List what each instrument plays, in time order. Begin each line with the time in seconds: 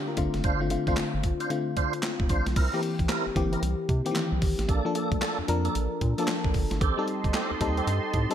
Already playing: fm electric piano D3 G3 A3 A#3 C4 D4 F4 G4
0.08 fm electric piano F4 A#4
0.17 analog synth bass G1, fm electric piano D3 A3 C4 F4, kick, closed hi-hat
0.34 analog synth bass F#1, snare, closed hi-hat
0.44 analog synth bass G1, tonewheel organ D4 F4 C5, kick, closed hi-hat
0.60 fm electric piano D3 A3 C4 F4
0.70 fm electric piano D3 A3 C4 F4, closed hi-hat
0.87 analog synth bass A1, fm electric piano D3 A3 C4 F4, tonewheel organ D4 F4 C5, kick, closed hi-hat
0.97 analog synth bass G1, snare, clap, closed hi-hat
1.14 analog synth bass G1
1.24 kick, closed hi-hat
1.40 tonewheel organ D4 F4 C5, closed hi-hat
1.50 fm electric piano D3 A3 C4 F4, closed hi-hat
1.76 tonewheel organ D4 F4 C5, kick, closed hi-hat
1.93 closed hi-hat
2.03 snare, clap, closed hi-hat
2.20 analog synth bass F1, kick
2.29 analog synth bass A#1, tonewheel organ D4 F4 C5, kick, closed hi-hat
2.46 analog synth bass B1, snare, closed hi-hat
2.56 analog synth bass C2, tonewheel organ C4 E4 A#4, kick, closed hi-hat, crash
2.73 fm electric piano E3 A#3 C4 G4
2.83 closed hi-hat
2.99 analog synth bass A#1, kick, closed hi-hat
3.09 tonewheel organ C4 E4 A#4, snare, clap, closed hi-hat
3.26 analog synth bass G1
3.35 analog synth bass G1, fm electric piano E3 A#3 C4 G4, kick, closed hi-hat
3.52 tonewheel organ C4 E4 A#4, closed hi-hat
3.62 analog synth bass C2, closed hi-hat
3.89 analog synth bass C3, kick, closed hi-hat
4.05 fm electric piano D#3 A#3 C4 G4, closed hi-hat
4.11 fm electric piano E3
4.16 snare, clap, closed hi-hat
4.32 analog synth bass C2
4.42 analog synth bass G#1, kick, open hi-hat
4.59 analog synth bass A1, snare, closed hi-hat
4.68 analog synth bass A#1, tonewheel organ A#3 D4 A4, kick, closed hi-hat
4.85 fm electric piano F3 A#3 D4 A4
4.95 tonewheel organ A#3 D4 A4, closed hi-hat
5.12 analog synth bass D2, kick, closed hi-hat
5.21 tonewheel organ A#3 D4 A4, snare, clap, closed hi-hat
5.39 analog synth bass F2
5.48 analog synth bass F2, fm electric piano F3 A#3 D4 A#4, closed hi-hat
5.64 tonewheel organ A#3 D4 A4, closed hi-hat
5.75 analog synth bass A#1, closed hi-hat
6.01 analog synth bass A#2, kick, closed hi-hat
6.18 fm electric piano F3 A#3 D4 A4, tonewheel organ A#3 D4 A4, closed hi-hat
6.28 snare, clap, closed hi-hat
6.44 analog synth bass A#1, kick
6.54 analog synth bass G1, kick, open hi-hat
6.71 analog synth bass G#1, snare, closed hi-hat
6.80 analog synth bass A1, tonewheel organ C4 G4 A4, analog synth pad G4 D#5 A5 C6, kick, closed hi-hat
6.97 fm electric piano G3 C4 D#4 A4
7.08 closed hi-hat
7.24 analog synth bass G1, kick, closed hi-hat
7.34 tonewheel organ C4 G4 A4, snare, clap, closed hi-hat
7.51 analog synth bass D#2
7.61 analog synth bass D#2, fm electric piano G3 C4 D#4 A4, kick, closed hi-hat
7.77 tonewheel organ C4 G4 A4, closed hi-hat
7.87 analog synth bass G2, closed hi-hat
8.14 analog synth bass A2, kick, closed hi-hat
8.30 fm electric piano G3 C4 D#4 A4, closed hi-hat